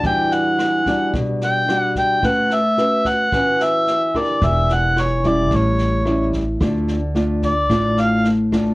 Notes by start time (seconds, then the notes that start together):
0.04 E2 E3 G3 D4 F#4 G5, kick, snare
0.32 F#5, snare
0.59 cross-stick, snare
0.86 G3 D4 F#4, kick, snare
1.14 B2, kick, snare
1.41 G5, snare
1.68 G3 D4 F#4, cross-stick, snare
1.80 F#5
1.96 G5, kick, snare
2.23 A1 A3 C#4 F#4 B4 F#5, kick, cross-stick, snare
2.50 E5, snare
2.77 C#4 F#4 B4, snare
3.05 F#5, kick, snare
3.32 E2 E3 C#4 F#4 B4, kick, cross-stick, snare
3.60 E5, snare
3.87 snare
4.14 D4 G4 A#4 D5, kick, cross-stick, snare
4.42 E1 E3, kick, snare
4.46 E5
4.69 snare
4.74 F#5
4.97 cross-stick, snare
5.01 C#5
5.24 G3 C#4 E4 D5, kick, snare
5.51 A1 A2, kick, snare
5.55 C#5
5.78 snare
6.05 G3 C#4 E4, cross-stick, snare
6.33 kick, snare
6.61 D2 D3 A3 D4 F4, kick, cross-stick, snare
6.88 snare
7.15 A3 D4 F4, snare
7.42 D5, kick, snare
7.70 A1 A2 A3 D4 F4, kick, cross-stick, snare
7.97 F5, snare
8.25 snare
8.52 A3 D4 F4, kick, cross-stick, snare